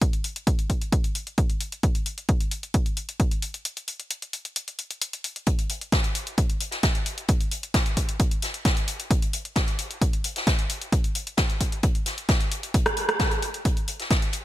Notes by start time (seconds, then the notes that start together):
0.02 kick, closed hi-hat
0.13 closed hi-hat
0.24 open hi-hat
0.36 closed hi-hat
0.47 kick, closed hi-hat
0.59 closed hi-hat
0.70 kick, open hi-hat
0.81 closed hi-hat
0.92 kick, closed hi-hat
1.04 closed hi-hat
1.15 open hi-hat
1.27 closed hi-hat
1.38 kick, closed hi-hat
1.50 closed hi-hat
1.61 open hi-hat
1.72 closed hi-hat
1.83 kick, closed hi-hat
1.95 closed hi-hat
2.06 open hi-hat
2.18 closed hi-hat
2.29 kick, closed hi-hat
2.40 closed hi-hat
2.51 open hi-hat
2.63 closed hi-hat
2.74 kick, closed hi-hat
2.86 closed hi-hat
2.97 open hi-hat
3.09 closed hi-hat
3.20 kick, closed hi-hat
3.31 closed hi-hat
3.42 open hi-hat
3.54 closed hi-hat
3.65 closed hi-hat
3.77 closed hi-hat
3.88 open hi-hat
4.00 closed hi-hat
4.11 closed hi-hat
4.22 closed hi-hat
4.33 open hi-hat
4.45 closed hi-hat
4.56 closed hi-hat
4.68 closed hi-hat
4.79 open hi-hat
4.91 closed hi-hat
5.02 closed hi-hat
5.13 closed hi-hat
5.24 open hi-hat
5.36 closed hi-hat
5.46 kick, closed hi-hat
5.59 closed hi-hat
5.70 closed hi-hat, open hi-hat
5.81 closed hi-hat
5.92 kick, snare, closed hi-hat
6.04 closed hi-hat
6.15 closed hi-hat, open hi-hat
6.27 closed hi-hat
6.38 kick, closed hi-hat
6.50 closed hi-hat
6.61 closed hi-hat, open hi-hat
6.71 snare, closed hi-hat
6.83 kick, snare, closed hi-hat
6.95 closed hi-hat
7.06 closed hi-hat, open hi-hat
7.18 closed hi-hat
7.28 kick, closed hi-hat
7.41 closed hi-hat
7.51 closed hi-hat, open hi-hat
7.63 closed hi-hat
7.74 kick, snare, closed hi-hat
7.86 closed hi-hat
7.97 kick, closed hi-hat, open hi-hat
8.09 closed hi-hat
8.20 kick, closed hi-hat
8.31 closed hi-hat
8.42 snare, closed hi-hat, open hi-hat
8.54 closed hi-hat
8.65 kick, snare, closed hi-hat
8.77 closed hi-hat
8.88 closed hi-hat, open hi-hat
9.00 closed hi-hat
9.11 kick, closed hi-hat
9.22 closed hi-hat
9.33 closed hi-hat, open hi-hat
9.45 closed hi-hat
9.56 kick, snare, closed hi-hat
9.68 closed hi-hat
9.79 closed hi-hat, open hi-hat
9.91 closed hi-hat
10.01 kick, closed hi-hat
10.13 closed hi-hat
10.24 closed hi-hat, open hi-hat
10.36 snare, closed hi-hat
10.47 kick, snare, closed hi-hat
10.59 closed hi-hat
10.70 closed hi-hat, open hi-hat
10.82 closed hi-hat
10.92 kick, closed hi-hat
11.04 closed hi-hat
11.15 closed hi-hat, open hi-hat
11.27 closed hi-hat
11.37 kick, snare, closed hi-hat
11.50 closed hi-hat
11.61 kick, closed hi-hat, open hi-hat
11.72 closed hi-hat
11.83 kick, closed hi-hat
11.95 closed hi-hat
12.06 snare, closed hi-hat, open hi-hat
12.18 closed hi-hat
12.29 kick, snare, closed hi-hat
12.41 closed hi-hat
12.52 closed hi-hat, open hi-hat
12.63 closed hi-hat
12.74 kick, closed hi-hat
12.86 cross-stick, closed hi-hat
12.97 closed hi-hat, open hi-hat
13.09 cross-stick, closed hi-hat
13.19 kick, snare, closed hi-hat
13.31 closed hi-hat
13.42 closed hi-hat, open hi-hat
13.54 closed hi-hat
13.65 kick, closed hi-hat
13.77 closed hi-hat
13.88 closed hi-hat, open hi-hat
14.00 snare, closed hi-hat
14.11 kick, snare, closed hi-hat
14.22 closed hi-hat
14.33 closed hi-hat, open hi-hat